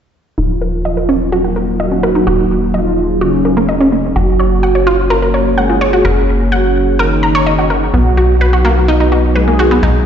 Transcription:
0.38 analog synth bass D#1, analog synth pad F#3 A#3 D#4 A#4, synth arpeggio sound D#4, analog polysynth F4
0.61 synth arpeggio sound A#4
0.85 synth arpeggio sound D#5
0.97 synth arpeggio sound A#4
1.09 synth arpeggio sound C#4
1.32 synth arpeggio sound F#4
1.44 synth arpeggio sound F#4
1.56 synth arpeggio sound A#4
1.80 analog polysynth F#4, synth arpeggio sound D#5
1.92 synth arpeggio sound C#4
2.03 synth arpeggio sound A#4
2.15 synth arpeggio sound D#4
2.27 analog synth bass D#1, synth arpeggio sound F#4, analog synth pad G#4
2.74 analog polysynth F4, synth arpeggio sound D#5
3.21 analog polysynth C#4, synth arpeggio sound F#4
3.45 synth arpeggio sound A#4
3.57 synth arpeggio sound A#3
3.69 synth arpeggio sound D#5
3.81 synth arpeggio sound C#4
3.92 synth arpeggio sound A#3
4.16 analog synth bass F#1, analog synth pad A#3 C#4 F#4 C#5, analog polysynth F#4, synth arpeggio sound F#4
4.40 synth arpeggio sound C#5
4.63 synth arpeggio sound F#5
4.75 synth arpeggio sound C#5
4.87 synth arpeggio sound F4
5.10 synth arpeggio sound A#4
5.22 synth arpeggio sound A#4
5.34 synth arpeggio sound C#5
5.57 analog polysynth G#4, synth arpeggio sound F#5
5.70 synth arpeggio sound F4
5.81 synth arpeggio sound C#5
5.93 synth arpeggio sound F#4
6.05 analog synth bass F#1, analog synth pad G#4, synth arpeggio sound A#4
6.52 analog polysynth F#4, synth arpeggio sound F#5
6.99 analog polysynth D#4, synth arpeggio sound A#4
7.23 synth arpeggio sound A#5
7.35 synth arpeggio sound C#5
7.46 synth arpeggio sound D#5
7.58 synth arpeggio sound F#4
7.70 synth arpeggio sound A#4
7.94 analog synth bass B1, analog synth pad F#3 B3 D#4 B4, synth arpeggio sound B3, analog polysynth F#4
8.17 synth arpeggio sound F#4
8.41 synth arpeggio sound B4
8.53 synth arpeggio sound F#4
8.65 synth arpeggio sound A#3
8.88 synth arpeggio sound D#4
9.00 synth arpeggio sound D#4
9.12 synth arpeggio sound F#4
9.36 analog polysynth G#4, synth arpeggio sound B4
9.48 synth arpeggio sound A#3
9.59 synth arpeggio sound F#4
9.71 synth arpeggio sound B3
9.83 analog synth bass B1, synth arpeggio sound D#4, analog synth pad A#4

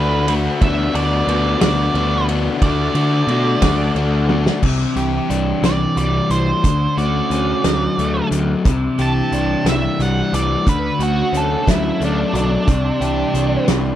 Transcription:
Already playing: picked electric bass D2, overdriven electric guitar D3 A3 D4 F#4, clean electric guitar F#4 A4, lead electric guitar B4, transistor combo organ B4 F#5 B5
0.27 overdriven electric guitar A3 D4 F#4, clean electric guitar F#4, ride
0.61 picked electric bass D2, overdriven electric guitar D3 B3 D4 F#4, transistor combo organ B4 D5, lead electric guitar E5, kick, ride
0.93 picked electric bass D2, overdriven electric guitar B3 D4 F#4, lead electric guitar D5, ride
1.27 picked electric bass D2, overdriven electric guitar D3 B3 D4 F#4, clean electric guitar D4, ride
1.61 picked electric bass D2, overdriven electric guitar B3 D4 F#4, lead electric guitar D5, snare, ride
1.94 picked electric bass D2, overdriven electric guitar D3 B3 D4 F#4, clean electric guitar D4, ride
2.28 overdriven electric guitar B3 D4 F#4, ride
2.62 picked electric bass D2, overdriven electric guitar D3 A3 D4 F#4, transistor combo organ A4 D6, lead electric guitar D5, kick, ride
2.95 picked electric bass D3, overdriven electric guitar A3 D4 F#4, ride
3.27 picked electric bass B2, overdriven electric guitar D3 A3 D4, clean electric guitar D4, ride
3.31 overdriven electric guitar F#4
3.62 picked electric bass D2, overdriven electric guitar A3 D4 F#4, kick, snare, ride
3.95 picked electric bass D2, overdriven electric guitar D3 A3 D4 F#4, clean electric guitar D4, ride
4.29 overdriven electric guitar A3 D4 F#4, high tom
4.46 snare
4.62 picked electric bass C2, overdriven electric guitar C3, clean electric guitar E3 E4, kick, crash
4.96 picked electric bass C2, overdriven electric guitar G4, closed hi-hat
5.30 picked electric bass C2, overdriven electric guitar D4, closed hi-hat
5.63 picked electric bass C2, overdriven electric guitar E3, lead electric guitar D5, snare, closed hi-hat
5.97 picked electric bass C2, overdriven electric guitar G3, lead electric guitar D5, closed hi-hat
6.30 picked electric bass C2, overdriven electric guitar E3, lead electric guitar C5, closed hi-hat
6.64 picked electric bass D2, overdriven electric guitar D3, clean electric guitar C#4 F#4, kick, closed hi-hat
6.97 picked electric bass D2, overdriven electric guitar F#4, lead electric guitar D5, closed hi-hat
7.30 picked electric bass D2, overdriven electric guitar C#4, closed hi-hat
7.64 picked electric bass D2, overdriven electric guitar F#3, snare, closed hi-hat
7.98 picked electric bass D2, overdriven electric guitar A3, closed hi-hat
8.31 picked electric bass D2, overdriven electric guitar F#3, closed hi-hat
8.65 picked electric bass C2, overdriven electric guitar C3, clean electric guitar D4 E4, kick, closed hi-hat
8.99 picked electric bass C2, overdriven electric guitar G4, lead electric guitar A5, closed hi-hat
9.32 picked electric bass C2, overdriven electric guitar D4, closed hi-hat
9.65 picked electric bass C2, overdriven electric guitar E3, snare, closed hi-hat
9.69 lead electric guitar E5
9.99 picked electric bass C2, overdriven electric guitar G3, lead electric guitar F#5, closed hi-hat
10.33 picked electric bass C2, overdriven electric guitar E3, lead electric guitar D5, closed hi-hat
10.67 picked electric bass D2, overdriven electric guitar D3, clean electric guitar A3 C#4 F#4, lead electric guitar B4, kick, closed hi-hat
10.99 picked electric bass D2, overdriven electric guitar F#4, lead electric guitar F#4, closed hi-hat
11.33 picked electric bass D2, overdriven electric guitar C#4, closed hi-hat
11.37 lead electric guitar A4
11.67 picked electric bass D2, overdriven electric guitar F#3, lead electric guitar E4, kick, snare, closed hi-hat
12.00 picked electric bass D2, overdriven electric guitar A3, closed hi-hat
12.05 lead electric guitar D4
12.33 picked electric bass B1, overdriven electric guitar F#3, lead electric guitar D4, closed hi-hat
12.66 picked electric bass C2, overdriven electric guitar C3, clean electric guitar D4 E4, transistor combo organ G4 D5 E5 C6, kick, closed hi-hat
13.00 picked electric bass C2, overdriven electric guitar G4, closed hi-hat
13.34 picked electric bass C2, overdriven electric guitar D4, closed hi-hat
13.68 picked electric bass C2, overdriven electric guitar E3, snare, closed hi-hat

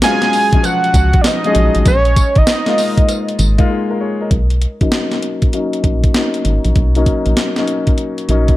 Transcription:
0.02 grand piano F#3 G#3 C#4 F4, analog synth lead G#5, snare, closed hi-hat, tambourine, cowbell
0.22 snare, closed hi-hat
0.33 open hi-hat, tambourine
0.53 grand piano F3 F#3 G#3 C#4, kick, closed hi-hat
0.63 analog synth lead F#5, closed hi-hat, tambourine, cowbell
0.84 closed hi-hat
0.94 fm bass C#2, kick, closed hi-hat, tambourine
1.13 kick, closed hi-hat
1.21 analog synth lead D5, snare, closed hi-hat, tambourine, cowbell
1.26 analog synth lead D#5
1.44 grand piano F3 G#3 C#4 G#4, closed hi-hat
1.52 fm bass A#1, grand piano F#3, closed hi-hat
1.75 fm bass A1, closed hi-hat
1.86 fm bass A#1, analog synth lead C#5, kick, closed hi-hat, tambourine, cowbell
2.05 closed hi-hat
2.16 kick, closed hi-hat, tambourine
2.35 fm bass G#1, analog synth lead D#5, kick, closed hi-hat
2.47 snare, closed hi-hat, tambourine, cowbell
2.66 grand piano G#3 A#3 D#4 F4, snare, closed hi-hat
2.78 open hi-hat, tambourine
2.98 kick, closed hi-hat
3.09 closed hi-hat, tambourine, cowbell
3.29 closed hi-hat
3.39 fm bass G#1, closed hi-hat, tambourine
3.58 grand piano G#3 A#3 D#4 F4, kick, closed hi-hat
3.70 grand piano D#4 G#4
3.90 grand piano F4 A#4
4.01 grand piano G#4 C#5
4.21 grand piano A#4 D#5
4.31 fm bass B1, kick, closed hi-hat
4.50 closed hi-hat
4.62 closed hi-hat
4.81 fm bass A#1, grand piano F#3 A#3 C#4 D#4, kick, closed hi-hat
4.92 snare, closed hi-hat
5.12 snare, closed hi-hat
5.22 closed hi-hat
5.42 kick, closed hi-hat
5.53 grand piano F#3 A#3 C#4 D#4, closed hi-hat
5.73 closed hi-hat
5.84 fm bass A#1, kick, closed hi-hat
6.04 kick, closed hi-hat
6.14 grand piano F#3 A#3 C#4 D#4, snare, closed hi-hat
6.34 closed hi-hat
6.45 fm bass G#1, closed hi-hat
6.64 fm bass A#1, closed hi-hat
6.76 fm bass B1, kick, closed hi-hat
6.95 grand piano F#3 A#3 C#4 D#4, closed hi-hat
7.06 kick, closed hi-hat
7.26 fm bass A#1, closed hi-hat
7.37 snare, closed hi-hat
7.56 grand piano F#3 A#3 C#4 D#4, snare, closed hi-hat
7.68 closed hi-hat
7.87 kick, closed hi-hat
7.98 closed hi-hat
8.18 closed hi-hat
8.29 fm bass A#1, grand piano F#3 A#3 C#4 D#4, closed hi-hat
8.48 kick, closed hi-hat

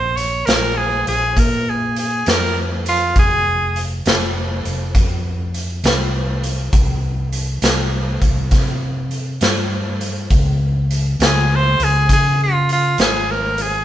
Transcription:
Already playing: fretless electric bass A#1, tenor saxophone C5
0.16 tenor saxophone C#5, closed hi-hat
0.46 fretless electric bass A#1, tenor saxophone A#4, snare, closed hi-hat
0.77 tenor saxophone G#4
1.07 fretless electric bass A#1, tenor saxophone G#4, closed hi-hat
1.37 fretless electric bass A#2, tenor saxophone A#4, kick, closed hi-hat
1.69 tenor saxophone G#4
1.96 tenor saxophone G#4, closed hi-hat
2.26 fretless electric bass F2, tenor saxophone A#4, snare, closed hi-hat
2.86 tenor saxophone F4, closed hi-hat
3.16 fretless electric bass F1, tenor saxophone G#4, kick, closed hi-hat
3.76 closed hi-hat
4.05 fretless electric bass F1, snare, closed hi-hat
4.65 fretless electric bass F1, closed hi-hat
4.95 fretless electric bass F2, kick, closed hi-hat
5.54 closed hi-hat
5.83 fretless electric bass C2, snare, closed hi-hat
6.43 closed hi-hat
6.73 fretless electric bass C2, kick, closed hi-hat
7.32 closed hi-hat
7.62 fretless electric bass C2, snare, closed hi-hat
8.22 fretless electric bass C2, kick, closed hi-hat
8.51 fretless electric bass C3, kick, snare, closed hi-hat
9.11 closed hi-hat
9.41 fretless electric bass G2, snare, closed hi-hat
10.01 closed hi-hat
10.30 fretless electric bass C#2, kick, closed hi-hat
10.91 closed hi-hat
11.19 fretless electric bass C#2, snare, closed hi-hat
11.26 tenor saxophone G#4
11.55 tenor saxophone C5
11.79 fretless electric bass C#2, closed hi-hat
11.84 tenor saxophone G#4
12.09 fretless electric bass C#3, kick, closed hi-hat
12.13 tenor saxophone G#4
12.43 tenor saxophone F4
12.69 tenor saxophone F4, closed hi-hat
12.98 fretless electric bass G#1, tenor saxophone G#4, snare, closed hi-hat
13.31 tenor saxophone A#4
13.58 tenor saxophone G#4, closed hi-hat

